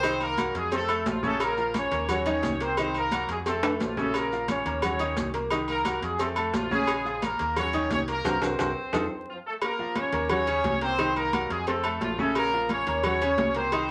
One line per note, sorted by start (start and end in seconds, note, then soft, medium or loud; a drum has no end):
0.00 0.49 C2 medium
0.00 0.32 D#3 medium
0.00 0.19 C4 medium
0.00 0.32 D#4 medium
0.00 0.19 C5 loud
0.00 0.32 D#5 medium
0.00 cowbell loud
0.00 high conga soft
0.00 low agogo loud
0.00 maracas medium
0.20 0.53 A#3 medium
0.20 0.54 A#4 loud
0.20 high conga soft
0.20 low agogo medium
0.20 maracas soft
0.37 0.66 F#3 medium
0.37 0.66 F#4 medium
0.37 0.66 F#5 medium
0.37 cowbell medium
0.37 high conga loud
0.37 low timbale medium
0.37 low agogo loud
0.37 maracas medium
0.54 1.02 F2 loud
0.54 0.73 G#3 medium
0.54 0.73 G#4 medium
0.54 cowbell medium
0.54 high conga soft
0.54 maracas soft
0.72 1.05 A3 medium
0.72 0.86 C4 medium
0.72 1.05 A4 loud
0.72 0.86 C5 medium
0.72 0.86 C6 medium
0.72 cowbell loud
0.72 high conga soft
0.72 low agogo medium
0.72 maracas medium
0.89 1.17 A3 medium
0.89 1.17 A4 medium
0.89 1.17 A5 medium
0.89 high conga soft
0.89 low agogo loud
0.89 maracas soft
1.05 1.86 A#1 medium
1.05 1.24 F3 medium
1.05 1.24 F4 medium
1.05 cowbell medium
1.05 high conga medium
1.05 low timbale medium
1.05 maracas medium
1.23 1.51 C#3 medium
1.23 1.40 A3 medium
1.23 1.51 C#4 medium
1.23 1.40 A4 medium
1.23 1.51 C#5 loud
1.23 high conga medium
1.23 maracas soft
1.40 1.73 A#3 medium
1.40 1.73 A#4 loud
1.40 cowbell loud
1.40 high conga soft
1.40 low agogo loud
1.40 maracas medium
1.57 1.86 F3 medium
1.57 1.86 F4 medium
1.57 1.86 F5 medium
1.57 high conga soft
1.57 maracas soft
1.74 2.07 C#4 medium
1.74 2.08 C#5 medium
1.74 cowbell medium
1.74 high conga loud
1.74 low timbale medium
1.74 low agogo medium
1.74 maracas medium
1.91 2.39 D#2 loud
1.91 2.06 A#3 medium
1.91 2.06 A#4 medium
1.91 2.06 A#5 medium
1.91 cowbell medium
1.91 high conga soft
1.91 maracas soft
2.09 2.23 F#3 medium
2.09 2.57 C#4 medium
2.09 2.23 F#4 medium
2.09 2.58 C#5 loud
2.09 2.23 F#5 medium
2.09 cowbell loud
2.09 high conga soft
2.09 low conga medium
2.09 low agogo loud
2.09 maracas medium
2.26 2.54 D#3 medium
2.26 2.54 D#4 medium
2.26 2.54 D#5 medium
2.26 high conga soft
2.26 low conga medium
2.26 low agogo medium
2.26 maracas soft
2.43 3.23 C2 medium
2.43 cowbell medium
2.43 high conga medium
2.43 low timbale medium
2.43 maracas medium
2.60 2.75 A#3 medium
2.60 2.77 C4 medium
2.60 2.75 A#4 medium
2.60 2.78 C5 medium
2.60 2.75 A#5 medium
2.60 cowbell medium
2.60 high conga soft
2.60 maracas soft
2.77 3.06 D#3 medium
2.77 2.94 C4 medium
2.77 3.06 D#4 medium
2.77 2.95 C5 medium
2.77 3.07 D#5 medium
2.77 cowbell loud
2.77 high conga soft
2.77 low agogo loud
2.77 maracas medium
2.94 3.28 A#3 medium
2.94 3.28 A#4 loud
2.94 high conga soft
2.94 low agogo medium
2.94 maracas soft
3.11 3.40 F#3 medium
3.11 3.41 F#4 medium
3.11 3.41 F#5 medium
3.11 cowbell medium
3.11 high conga medium
3.11 low timbale medium
3.11 low agogo loud
3.11 maracas medium
3.28 3.76 F2 medium
3.28 3.38 G#3 medium
3.28 3.38 G#4 medium
3.28 cowbell medium
3.28 high conga soft
3.28 maracas soft
3.46 3.78 A3 medium
3.46 3.60 C4 medium
3.46 3.78 A4 medium
3.46 3.60 C5 medium
3.46 3.61 C6 medium
3.46 cowbell loud
3.46 high conga soft
3.46 low agogo medium
3.46 maracas medium
3.62 3.91 A3 medium
3.62 3.91 A4 medium
3.62 3.92 A5 medium
3.62 high conga soft
3.62 high timbale loud
3.62 low agogo loud
3.62 maracas soft
3.80 4.60 A#1 medium
3.80 3.97 F3 medium
3.80 3.97 F4 medium
3.80 cowbell medium
3.80 high conga medium
3.80 low timbale loud
3.80 maracas medium
3.97 4.25 C#3 medium
3.97 4.15 A3 medium
3.97 4.26 C#4 medium
3.97 4.15 A4 medium
3.97 4.26 C#5 medium
3.97 high conga medium
3.97 low timbale loud
3.97 maracas soft
4.14 4.47 A#3 medium
4.14 4.47 A#4 medium
4.14 cowbell loud
4.14 high conga soft
4.14 low agogo loud
4.14 maracas medium
4.31 4.60 F3 medium
4.31 4.60 F4 medium
4.31 4.60 F5 medium
4.31 high conga soft
4.31 maracas soft
4.48 4.81 C#4 medium
4.48 4.81 C#5 medium
4.48 cowbell medium
4.48 high conga loud
4.48 low timbale medium
4.48 low agogo medium
4.48 maracas medium
4.65 5.13 D#2 loud
4.65 4.80 A#3 medium
4.65 4.80 A#4 medium
4.65 4.80 A#5 medium
4.65 cowbell medium
4.65 high conga soft
4.65 maracas soft
4.82 4.97 F#3 medium
4.82 5.31 C#4 medium
4.82 4.97 F#4 medium
4.82 5.31 C#5 medium
4.82 4.97 F#5 medium
4.82 cowbell loud
4.82 high conga soft
4.82 low conga medium
4.82 low agogo loud
4.82 maracas medium
4.99 5.28 D#3 medium
4.99 5.28 D#4 medium
4.99 5.28 D#5 medium
4.99 high conga soft
4.99 low agogo medium
4.99 maracas soft
5.16 5.97 C2 medium
5.16 cowbell medium
5.16 high conga medium
5.16 low timbale medium
5.16 maracas medium
5.34 5.48 A#3 medium
5.34 5.48 A#4 medium
5.34 5.49 A#5 medium
5.34 cowbell medium
5.34 maracas soft
5.50 5.79 D#3 medium
5.50 5.80 D#4 medium
5.50 5.80 D#5 medium
5.50 cowbell medium
5.50 high conga soft
5.50 low agogo loud
5.50 maracas medium
5.68 6.01 A#3 medium
5.68 6.01 A#4 medium
5.68 high conga soft
5.68 low agogo medium
5.68 maracas soft
5.85 6.13 F#3 medium
5.85 6.14 F#4 medium
5.85 6.14 F#5 medium
5.85 cowbell medium
5.85 high conga medium
5.85 low timbale medium
5.85 low agogo loud
5.85 maracas medium
6.02 6.50 F2 loud
6.02 6.19 G#3 medium
6.02 6.19 G#4 medium
6.02 cowbell medium
6.02 high conga soft
6.02 maracas soft
6.19 6.54 A3 medium
6.19 6.34 C4 medium
6.19 6.54 A4 medium
6.19 6.34 C5 medium
6.19 6.34 C6 medium
6.19 cowbell loud
6.19 high conga soft
6.19 low agogo medium
6.19 maracas medium
6.36 6.65 A3 medium
6.36 6.65 A4 medium
6.36 6.66 A5 medium
6.36 high conga soft
6.36 low agogo loud
6.36 maracas soft
6.53 7.33 A#1 medium
6.53 6.71 F3 medium
6.53 6.71 F4 medium
6.53 cowbell medium
6.53 high conga loud
6.53 low timbale loud
6.53 maracas medium
6.71 6.99 C#3 loud
6.71 7.20 G#3 medium
6.71 7.00 C#4 medium
6.71 7.20 G#4 loud
6.71 7.00 C#5 medium
6.71 high conga medium
6.71 maracas soft
6.87 cowbell loud
6.87 low agogo loud
6.87 maracas medium
7.05 7.33 F3 medium
7.05 7.33 F4 medium
7.05 7.34 F5 medium
7.05 high conga soft
7.05 maracas soft
7.22 7.57 A#3 medium
7.22 7.58 A#4 medium
7.22 cowbell medium
7.22 high conga loud
7.22 low timbale medium
7.22 low agogo medium
7.22 maracas medium
7.39 7.87 D#2 loud
7.39 7.54 A#3 medium
7.39 7.54 A#4 medium
7.39 7.54 A#5 medium
7.39 cowbell medium
7.39 high conga soft
7.39 maracas soft
7.56 7.71 F#3 medium
7.56 7.89 C#4 medium
7.56 7.71 F#4 medium
7.56 7.89 C#5 loud
7.56 7.71 F#5 medium
7.56 cowbell loud
7.56 high conga soft
7.56 low conga medium
7.56 low agogo loud
7.56 maracas medium
7.73 8.02 D#3 medium
7.73 8.02 D#4 medium
7.73 8.02 D#5 medium
7.73 high conga soft
7.73 low conga medium
7.73 low agogo medium
7.73 maracas soft
7.91 8.22 C2 medium
7.91 8.00 C#4 medium
7.91 8.00 C#5 medium
7.91 cowbell medium
7.91 high conga loud
7.91 low timbale medium
7.91 maracas medium
8.08 8.22 A#3 medium
8.08 8.41 A#3 medium
8.08 8.22 A#4 medium
8.08 8.41 A#4 loud
8.08 8.22 A#5 medium
8.08 cowbell medium
8.08 maracas soft
8.25 8.38 C2 loud
8.25 8.36 F#4 medium
8.25 8.36 A#4 medium
8.25 8.36 C5 medium
8.25 cowbell loud
8.25 low conga loud
8.25 high timbale loud
8.25 maracas loud
8.42 8.55 C2 loud
8.42 9.42 C4 medium
8.42 8.53 F#4 medium
8.42 8.53 A#4 loud
8.42 8.53 C5 medium
8.42 9.42 C5 loud
8.42 cowbell loud
8.42 low conga medium
8.42 high timbale loud
8.42 maracas loud
8.59 8.72 C2 medium
8.59 8.70 F#4 medium
8.59 8.70 A#4 loud
8.59 8.70 C5 loud
8.59 cowbell loud
8.59 low conga medium
8.59 high timbale loud
8.59 maracas loud
8.93 9.06 F2 medium
8.93 9.05 D#4 loud
8.93 9.05 F4 loud
8.93 9.05 A4 loud
8.93 cowbell medium
8.93 low conga loud
8.93 high timbale loud
8.93 maracas loud
9.29 9.37 F3 medium
9.29 9.37 F4 medium
9.46 9.54 A3 medium
9.46 9.54 A4 medium
9.61 9.94 A#3 medium
9.61 9.94 A#4 loud
9.61 cowbell loud
9.61 high conga soft
9.61 low agogo loud
9.79 10.07 F3 medium
9.79 10.07 F4 medium
9.79 10.08 F5 medium
9.79 high conga soft
9.96 10.30 C#4 medium
9.96 10.29 C#5 loud
9.96 cowbell medium
9.96 high conga medium
9.96 low timbale medium
9.96 low agogo medium
10.12 10.60 D#2 loud
10.12 10.27 A#3 medium
10.12 10.27 A#4 medium
10.12 10.28 A#5 medium
10.12 cowbell medium
10.12 high conga soft
10.29 10.44 F#3 medium
10.29 10.78 C#4 medium
10.29 10.45 F#4 medium
10.29 10.78 C#5 loud
10.29 10.45 F#5 medium
10.29 cowbell loud
10.29 high conga soft
10.29 low conga medium
10.29 low agogo loud
10.47 10.75 C#3 medium
10.47 10.76 C#4 medium
10.47 10.76 C#5 medium
10.47 high conga soft
10.47 low agogo medium
10.64 11.44 C2 medium
10.64 cowbell medium
10.64 high conga loud
10.64 low timbale medium
10.81 10.96 A#3 medium
10.81 11.14 C4 medium
10.81 10.96 A#4 medium
10.81 11.14 C5 loud
10.81 10.96 A#5 medium
10.81 cowbell medium
10.81 high conga soft
10.98 11.27 D#3 medium
10.98 11.27 D#4 medium
10.98 11.27 D#5 medium
10.98 cowbell loud
10.98 high conga soft
10.98 low agogo loud
11.16 11.48 A#3 medium
11.16 11.48 A#4 loud
11.16 high conga soft
11.16 low agogo medium
11.33 11.61 F#3 medium
11.33 11.61 F#4 medium
11.33 11.62 F#5 medium
11.33 cowbell medium
11.33 high conga loud
11.33 low timbale medium
11.33 low agogo loud
11.50 11.98 F2 loud
11.50 11.68 G#3 medium
11.50 11.68 G#4 loud
11.50 cowbell medium
11.50 high conga soft
11.67 12.00 A3 medium
11.67 11.81 C4 medium
11.67 11.99 A4 medium
11.67 11.81 C5 medium
11.67 11.82 C6 medium
11.67 cowbell loud
11.67 high conga soft
11.67 low agogo medium
11.84 12.12 A3 medium
11.84 12.13 A4 medium
11.84 12.13 A5 medium
11.84 high conga soft
11.84 low agogo loud
12.01 12.81 A#1 medium
12.01 12.18 F3 medium
12.01 12.18 F4 medium
12.01 cowbell medium
12.01 high conga medium
12.01 low timbale medium
12.18 12.47 C#3 medium
12.18 12.36 A3 medium
12.18 12.47 C#4 loud
12.18 12.36 A4 medium
12.18 12.47 C#5 medium
12.18 high conga medium
12.35 12.68 A#3 medium
12.35 12.68 A#4 loud
12.35 cowbell loud
12.35 low agogo loud
12.52 12.81 F3 medium
12.52 12.81 F4 medium
12.52 12.81 F5 medium
12.52 high conga soft
12.69 13.03 C#4 medium
12.69 13.02 C#5 medium
12.69 cowbell medium
12.69 high conga loud
12.69 low timbale medium
12.69 low agogo medium
12.87 13.34 D#2 loud
12.87 13.01 A#3 medium
12.87 13.01 A#4 medium
12.87 13.02 A#5 medium
12.87 cowbell medium
12.87 high conga soft
13.03 13.18 F#3 medium
13.03 13.53 C#4 medium
13.03 13.19 F#4 medium
13.03 13.53 C#5 loud
13.03 13.19 F#5 medium
13.03 cowbell loud
13.03 high conga soft
13.03 low conga medium
13.03 low agogo loud
13.21 13.49 C#3 medium
13.21 13.50 C#4 medium
13.21 13.50 C#5 medium
13.21 high conga soft
13.21 low agogo medium
13.38 13.91 C2 medium
13.38 cowbell medium
13.38 high conga loud
13.38 low timbale loud
13.55 13.70 A#3 medium
13.55 13.91 C4 medium
13.55 13.70 A#4 medium
13.55 13.91 C5 loud
13.55 13.70 A#5 medium
13.55 cowbell medium
13.55 high conga soft
13.72 13.91 D#3 medium
13.72 13.91 D#4 medium
13.72 13.91 D#5 medium
13.72 cowbell loud
13.72 high conga soft
13.72 low agogo loud